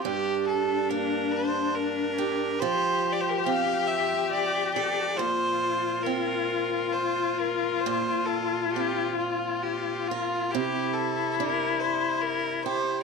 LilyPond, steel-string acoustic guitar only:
\new Staff \with { instrumentName = "Steel-string acoustic guitar" } { \time 3/4 \key bes \lydian \tempo 4 = 70 g,4 bes4. g'8 | f4 c'4. a'8 | bes,4 c'2 | bes,4 c'4. bes'8 |
c4 d'4. g'8 | }